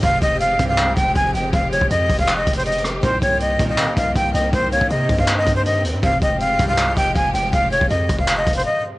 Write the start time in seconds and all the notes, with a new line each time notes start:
Already playing: C4 G4
0.03 F1 G#1 G2 C3 F3 G#3 F5, kick, closed hi-hat
0.22 F1 D#5, kick, closed hi-hat
0.40 F5, closed hi-hat
0.59 G#1 C2 G2 C3, kick, closed hi-hat
0.68 F5
0.78 clap, closed hi-hat
0.97 F1 G5, kick, closed hi-hat
1.16 F1 G#5, kick, closed hi-hat
1.34 F1 G5, closed hi-hat
1.53 F1 F5, kick, closed hi-hat
1.71 C#5, closed hi-hat
1.81 F1, kick
1.90 F2 D#5, closed hi-hat
2.09 F1, kick, open hi-hat
2.19 F5, kick
2.28 clap, closed hi-hat
2.37 D#5
2.47 F1, kick, closed hi-hat
2.53 C5, closed hi-hat
2.59 closed hi-hat
2.65 D#5, closed hi-hat
2.72 closed hi-hat
2.78 closed hi-hat
2.84 cross-stick, closed hi-hat
3.02 C2 A#2 D#3 A#3 C4 C5, kick, closed hi-hat
3.22 C2 C#5 G5, kick, closed hi-hat
3.40 D#5, closed hi-hat
3.59 C2 A#2 D#3, kick, closed hi-hat
3.69 D#5
3.78 F5, clap, closed hi-hat
3.97 C2 D#5 F5, kick, closed hi-hat
4.15 C2 F5 G5, kick, closed hi-hat
4.34 C2 D#5 G5, closed hi-hat
4.53 C2 C5, kick, closed hi-hat
4.72 C#5 F5, closed hi-hat
4.81 C2, kick
4.90 C3 D#5, closed hi-hat
5.09 G2, kick, open hi-hat
5.19 F5, kick
5.28 clap, closed hi-hat
5.37 D#5
5.47 G2, kick, closed hi-hat
5.56 C5
5.66 D#5, closed hi-hat
5.84 D#2, closed hi-hat
5.94 G2
6.03 F1 G#1 G2 C3 F3 G#3 G4 F5, kick, closed hi-hat
6.22 F1 D#5 G5, kick, closed hi-hat
6.40 F5, closed hi-hat
6.59 G#1 C2 G2 C3, kick, closed hi-hat
6.68 F5
6.78 F5, clap, closed hi-hat
6.97 F1 D#5 G5, kick, closed hi-hat
7.16 F1 F5 G#5, kick, closed hi-hat
7.34 F1 G5, closed hi-hat
7.53 F1 F5, kick, closed hi-hat
7.71 C#5 F5, closed hi-hat
7.81 F1, kick
7.90 F2 D#5, closed hi-hat
8.09 F1, kick, closed hi-hat
8.19 F5, kick
8.28 F5, clap, closed hi-hat
8.37 D#5
8.47 F1, kick, closed hi-hat
8.53 C5, closed hi-hat
8.59 closed hi-hat
8.65 D#5